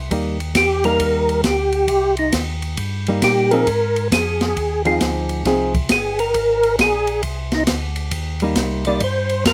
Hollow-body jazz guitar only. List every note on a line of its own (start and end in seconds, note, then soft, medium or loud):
0.11 0.37 G3 medium
0.11 0.38 A#3 medium
0.11 0.38 D#4 medium
0.84 1.42 G3 medium
0.84 1.42 A#3 medium
0.84 1.43 D#4 medium
3.08 3.50 G3 medium
3.08 3.50 A#3 medium
3.08 3.50 D#4 medium
3.53 3.66 F3 medium
3.53 3.67 C4 medium
3.53 3.67 D#4 medium
3.53 3.67 G#4 medium
4.85 5.43 F3 medium
4.85 5.43 C4 medium
4.85 5.43 D#4 medium
4.85 5.43 G#4 medium
5.46 5.72 F3 medium
5.46 5.72 C4 medium
5.46 5.72 D#4 medium
5.46 5.73 G#4 medium
8.42 8.84 G3 medium
8.42 8.84 A#3 medium
8.42 8.84 D#4 medium
8.87 9.01 G3 medium
8.87 9.01 A#3 medium
8.87 9.01 D#4 medium